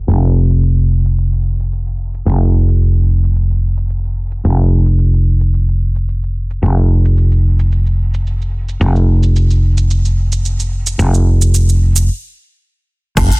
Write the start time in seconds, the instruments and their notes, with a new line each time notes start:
0.08 fretless electric bass F1, shaker
0.23 shaker
0.50 shaker
0.63 shaker
0.78 shaker
1.05 shaker
1.18 shaker
1.33 shaker
1.60 shaker
1.72 shaker
1.87 shaker
2.14 shaker
2.26 fretless electric bass F1, shaker
2.41 shaker
2.69 shaker
2.82 shaker
2.97 shaker
3.24 shaker
3.36 shaker
3.50 shaker
3.77 shaker
3.90 shaker
4.05 shaker
4.32 shaker
4.45 fretless electric bass F1, shaker
4.59 shaker
4.86 shaker
4.99 shaker
5.13 shaker
5.41 shaker
5.53 shaker
5.68 shaker
5.96 shaker
6.08 shaker
6.23 shaker
6.51 shaker
6.63 fretless electric bass F1, shaker
6.78 shaker
7.05 shaker
7.17 shaker
7.32 shaker
7.59 shaker
7.72 shaker
7.86 shaker
8.14 shaker
8.27 shaker
8.42 shaker
8.69 shaker
8.81 fretless electric bass F1, shaker
8.96 shaker
9.23 shaker
9.36 shaker
9.51 shaker
9.78 shaker
9.91 shaker
10.05 shaker
10.32 shaker
10.45 shaker
10.60 shaker
10.87 shaker
10.99 fretless electric bass F1, shaker
11.14 shaker
11.42 shaker
11.54 shaker
11.69 shaker
11.96 shaker
13.17 fretless electric bass F1, kick, closed hi-hat, crash, low woodblock, shaker
13.32 closed hi-hat, shaker